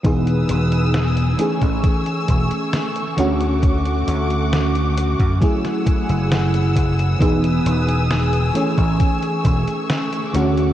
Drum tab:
HH |xxxxxxxxxxxxxxxx|xxxxxxxxxxxxxxxx|xxxxxxxxxxxxxxxx|
SD |----o-------o---|----o----o--o---|----o-------o---|
BD |o------oo-o-----|o------oo-o---o-|o------oo-o-----|